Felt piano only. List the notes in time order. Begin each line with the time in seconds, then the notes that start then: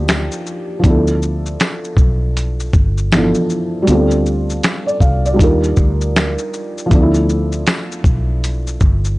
Already playing: F3 A#3 D4 D#4 G4
0.79 F3 B3
0.84 D4 E4
0.89 A4
3.12 E3 B3 D4 E4
3.17 F3 A4
3.82 G3 B3
3.88 C4 D4 F4
3.92 A4
4.86 D5
5.01 F5
5.25 D5
5.34 G3 D4
5.38 D#4 F4
5.43 A#4
6.86 F3 A3
6.91 B3 D4
6.96 D#4
7.02 E4